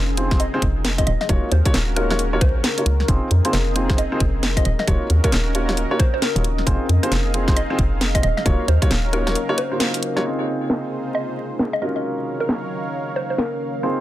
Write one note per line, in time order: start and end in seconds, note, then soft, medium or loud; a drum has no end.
0.00 0.47 F1 medium
0.00 1.05 C4 medium
0.00 1.07 C4 medium
0.00 1.06 D#4 medium
0.00 6.63 F4 medium
0.00 1.06 G#4 medium
0.00 1.90 G#4 medium
0.00 0.14 A#4 medium
0.00 1.07 D#5 medium
0.17 0.29 C4 medium
0.17 0.29 D#4 medium
0.17 0.29 F4 medium
0.17 0.29 G#4 medium
0.17 0.29 C5 medium
0.17 closed hi-hat loud
0.31 0.40 C4 medium
0.31 0.40 D#4 medium
0.31 0.40 F4 medium
0.31 0.40 G#4 medium
0.31 0.40 C5 loud
0.31 kick loud
0.31 snare medium
0.40 0.53 D#5 medium
0.40 closed hi-hat medium
0.54 0.62 C4 loud
0.54 0.62 D#4 medium
0.54 0.62 F4 medium
0.54 0.62 G#4 medium
0.54 0.62 C5 loud
0.62 1.03 F1 medium
0.62 kick loud
0.62 closed hi-hat loud
0.85 snare loud
0.85 closed hi-hat medium
0.98 1.06 C4 medium
0.98 1.06 D#4 medium
0.98 1.06 F4 medium
0.98 1.06 G#4 medium
0.98 1.06 C5 medium
0.98 1.05 D#5 loud
0.98 kick medium
0.98 closed hi-hat medium
1.07 1.17 D#1 medium
1.07 3.08 C#4 medium
1.07 3.07 C#4 medium
1.07 3.07 F#4 medium
1.07 3.07 A#4 medium
1.07 1.16 D#5 medium
1.07 closed hi-hat loud
1.21 3.70 A#4 medium
1.21 1.26 D#5 medium
1.21 snare soft
1.29 1.39 D#1 loud
1.29 1.48 A#3 medium
1.29 1.48 D#4 medium
1.29 1.48 F4 medium
1.29 1.48 F#4 medium
1.29 1.48 C#5 medium
1.29 kick loud
1.29 closed hi-hat medium
1.52 1.62 D#2 loud
1.52 1.65 C5 medium
1.52 closed hi-hat loud
1.66 1.74 A#3 medium
1.66 1.74 D#4 medium
1.66 1.74 F4 medium
1.66 1.74 F#4 medium
1.66 1.74 C#5 loud
1.66 kick loud
1.66 closed hi-hat medium
1.74 2.43 D#1 medium
1.74 snare loud
1.74 closed hi-hat medium
1.84 14.00 D#5 medium
1.96 2.08 A#3 medium
1.96 2.08 D#4 medium
1.96 2.08 F4 medium
1.96 2.08 F#4 medium
1.96 2.05 A#4 medium
1.96 2.08 C#5 medium
1.96 closed hi-hat loud
2.10 2.19 A#3 medium
2.10 2.19 D#4 medium
2.10 2.19 F4 medium
2.10 2.19 F#4 medium
2.10 2.16 A#4 medium
2.10 2.19 C#5 loud
2.10 snare medium
2.19 closed hi-hat medium
2.33 2.41 A#3 medium
2.33 2.41 D#4 medium
2.33 2.41 F4 medium
2.33 2.41 F#4 medium
2.33 2.41 C#5 loud
2.41 2.57 C#2 medium
2.41 3.05 C5 medium
2.41 kick loud
2.41 closed hi-hat loud
2.55 2.61 G#1 medium
2.64 snare loud
2.64 closed hi-hat medium
2.78 2.86 A#3 medium
2.78 2.86 D#4 medium
2.78 2.86 F4 medium
2.78 2.86 F#4 medium
2.78 2.86 C#5 medium
2.78 closed hi-hat medium
2.86 3.04 C#2 medium
2.86 closed hi-hat loud
3.00 snare soft
3.08 3.18 F1 loud
3.08 4.64 C4 medium
3.08 4.65 C4 medium
3.08 3.27 C4 medium
3.08 3.27 D#4 medium
3.08 4.64 D#4 medium
3.08 3.27 F4 medium
3.08 4.64 G#4 medium
3.08 3.27 G#4 medium
3.08 3.27 C5 medium
3.08 kick loud
3.08 closed hi-hat medium
3.26 5.48 G#4 medium
3.31 3.41 F2 loud
3.31 closed hi-hat loud
3.45 3.53 C4 medium
3.45 3.53 D#4 medium
3.45 3.53 F4 medium
3.45 3.53 G#4 medium
3.45 3.53 C5 loud
3.45 closed hi-hat medium
3.53 4.06 F1 medium
3.53 snare loud
3.53 closed hi-hat medium
3.76 3.88 C4 medium
3.76 3.88 D#4 medium
3.76 3.88 F4 medium
3.76 3.88 G#4 medium
3.76 3.88 C5 medium
3.76 closed hi-hat loud
3.90 3.98 C4 medium
3.90 3.98 D#4 medium
3.90 3.98 F4 medium
3.90 3.98 G#4 medium
3.90 3.98 C5 loud
3.90 kick loud
3.90 snare medium
3.98 4.12 D#5 medium
3.98 closed hi-hat medium
4.12 4.20 C4 loud
4.12 4.20 D#4 medium
4.12 4.20 F4 medium
4.12 4.20 G#4 medium
4.12 4.20 C5 loud
4.20 4.61 F1 medium
4.20 kick loud
4.20 closed hi-hat loud
4.43 snare loud
4.43 closed hi-hat medium
4.57 4.64 C4 medium
4.57 4.64 D#4 medium
4.57 4.64 F4 medium
4.57 4.64 G#4 medium
4.57 4.64 C5 medium
4.57 4.64 D#5 medium
4.57 kick medium
4.57 closed hi-hat medium
4.65 4.75 D#1 medium
4.65 6.67 C#4 medium
4.65 6.65 C#4 medium
4.65 6.65 F#4 medium
4.65 6.65 A#4 medium
4.65 4.74 D#5 medium
4.65 closed hi-hat loud
4.79 4.85 D#5 medium
4.79 snare soft
4.84 4.98 D#1 loud
4.84 5.06 A#3 medium
4.84 5.06 D#4 medium
4.84 5.06 F4 medium
4.84 5.06 F#4 medium
4.84 7.30 A#4 medium
4.84 5.06 C#5 medium
4.84 kick loud
4.84 closed hi-hat medium
5.10 5.20 D#2 loud
5.10 closed hi-hat loud
5.24 5.32 A#3 medium
5.24 5.32 D#4 medium
5.24 5.32 F4 medium
5.24 5.32 F#4 medium
5.24 5.32 A#4 medium
5.24 5.32 C#5 loud
5.24 kick medium
5.24 closed hi-hat medium
5.32 5.85 D#1 medium
5.32 snare loud
5.32 closed hi-hat medium
5.55 5.67 A#3 medium
5.55 5.67 D#4 medium
5.55 5.67 F4 medium
5.55 5.67 F#4 medium
5.55 5.67 C#5 medium
5.55 closed hi-hat loud
5.69 5.77 A#3 medium
5.69 5.77 D#4 medium
5.69 5.77 F4 medium
5.69 5.77 F#4 medium
5.69 5.77 C#5 medium
5.69 snare medium
5.77 closed hi-hat medium
5.91 5.99 A#3 loud
5.91 5.99 D#4 medium
5.91 5.99 F4 medium
5.91 5.99 F#4 medium
5.91 5.99 C#5 loud
6.00 6.08 C5 medium
6.00 kick loud
6.00 closed hi-hat loud
6.14 6.19 C5 medium
6.22 6.72 A#4 medium
6.22 snare loud
6.22 closed hi-hat medium
6.36 6.63 D#1 loud
6.36 6.44 A#3 medium
6.36 6.44 D#4 medium
6.36 6.44 F4 medium
6.36 6.44 F#4 medium
6.36 6.44 C#5 medium
6.36 closed hi-hat medium
6.44 closed hi-hat loud
6.58 snare soft
6.67 6.77 F1 loud
6.67 6.86 C4 medium
6.67 8.22 C4 medium
6.67 8.24 C4 medium
6.67 6.86 D#4 medium
6.67 8.22 D#4 medium
6.67 6.85 F4 medium
6.67 6.85 G#4 medium
6.67 8.22 G#4 medium
6.67 6.86 C5 medium
6.67 10.21 F5 medium
6.67 kick loud
6.67 closed hi-hat medium
6.89 6.99 F2 loud
6.89 closed hi-hat loud
7.03 7.11 C4 medium
7.03 7.11 D#4 medium
7.03 7.11 F4 medium
7.03 7.11 G#4 medium
7.03 7.11 C5 loud
7.03 closed hi-hat medium
7.07 9.06 G#4 medium
7.11 7.64 F1 medium
7.11 snare loud
7.11 closed hi-hat medium
7.34 7.46 C4 medium
7.34 7.46 D#4 medium
7.34 7.46 F4 medium
7.34 7.46 G#4 medium
7.34 7.46 C5 medium
7.34 closed hi-hat loud
7.48 7.56 C4 medium
7.48 7.56 D#4 medium
7.48 7.56 F4 medium
7.48 7.56 G#4 medium
7.48 7.56 C5 loud
7.48 kick loud
7.48 snare medium
7.56 7.70 D#5 medium
7.56 closed hi-hat medium
7.70 7.79 C4 loud
7.70 7.79 D#4 medium
7.70 7.79 F4 medium
7.70 7.79 G#4 medium
7.70 7.79 C5 loud
7.79 8.19 F1 medium
7.79 kick loud
7.79 closed hi-hat loud
8.01 snare loud
8.01 closed hi-hat medium
8.15 8.22 C4 medium
8.15 8.22 D#4 medium
8.15 8.22 F4 medium
8.15 8.22 G#4 medium
8.15 8.22 C5 medium
8.15 8.22 D#5 medium
8.15 kick medium
8.15 closed hi-hat medium
8.23 8.33 D#1 medium
8.23 10.23 F#3 medium
8.23 10.23 C#4 medium
8.23 10.25 C#4 medium
8.23 10.23 A#4 medium
8.23 8.32 D#5 medium
8.23 closed hi-hat loud
8.37 8.43 D#5 medium
8.37 snare soft
8.46 8.56 D#1 loud
8.46 8.65 A#3 medium
8.46 8.65 D#4 medium
8.46 8.65 F4 medium
8.46 8.65 F#4 medium
8.46 8.65 C#5 medium
8.46 kick loud
8.46 closed hi-hat medium
8.57 10.89 A#4 medium
8.68 8.78 D#2 loud
8.68 8.82 C5 medium
8.68 closed hi-hat loud
8.82 8.90 A#3 medium
8.82 8.90 D#4 medium
8.82 8.90 F4 medium
8.82 8.90 F#4 medium
8.82 8.90 C#5 loud
8.82 kick loud
8.82 closed hi-hat medium
8.90 9.35 D#1 medium
8.90 snare loud
8.90 closed hi-hat medium
9.13 9.25 A#3 medium
9.13 9.25 D#4 medium
9.13 9.25 F4 medium
9.13 9.25 F#4 medium
9.13 9.22 A#4 medium
9.13 9.25 C#5 medium
9.13 closed hi-hat loud
9.27 9.35 A#3 medium
9.27 9.35 D#4 medium
9.27 9.35 F4 medium
9.27 9.35 F#4 medium
9.27 9.32 A#4 medium
9.27 9.35 C#5 loud
9.27 snare medium
9.27 closed hi-hat soft
9.35 closed hi-hat medium
9.49 9.57 A#3 loud
9.49 9.58 D#4 medium
9.49 9.57 F4 medium
9.49 9.58 F#4 medium
9.49 9.58 C#5 loud
9.58 10.22 C5 medium
9.58 closed hi-hat loud
9.72 10.13 A#3 medium
9.72 10.13 D#4 medium
9.72 10.13 F4 medium
9.72 10.13 F#4 medium
9.72 10.13 C5 medium
9.80 snare loud
9.80 closed hi-hat medium
9.94 closed hi-hat medium
10.03 closed hi-hat loud
10.16 10.23 A#3 loud
10.16 10.23 D#4 medium
10.16 10.23 F4 medium
10.16 10.23 F#4 medium
10.16 10.23 C#5 loud
10.16 snare soft
10.25 11.82 C4 medium
10.25 11.80 C4 medium
10.25 11.80 D#4 medium
10.25 11.80 F4 medium
10.25 11.80 G#4 medium
10.25 11.80 C5 medium
10.43 12.65 G#4 medium
10.70 snare loud
11.15 11.28 D#5 medium
11.59 snare loud
11.73 11.80 D#5 medium
11.82 13.81 D#3 medium
11.82 13.81 F#3 medium
11.82 13.81 C#4 medium
11.82 13.83 C#4 medium
11.82 13.81 D#4 medium
11.82 13.81 F4 medium
11.82 13.81 F#4 medium
11.82 13.81 A#4 medium
11.82 13.81 C#5 medium
11.82 11.91 D#5 medium
11.82 14.00 F5 medium
11.96 12.01 D#5 medium
12.05 14.00 A#4 medium
12.40 12.48 A#4 medium
12.49 snare loud
13.16 13.25 C5 medium
13.30 13.35 C5 medium
13.38 13.89 A#4 medium
13.38 snare loud
13.83 14.00 C4 medium
13.83 14.00 D#4 medium
13.83 14.00 F4 medium
13.83 14.00 G#4 medium
13.83 14.00 C5 medium
13.94 14.00 G#4 medium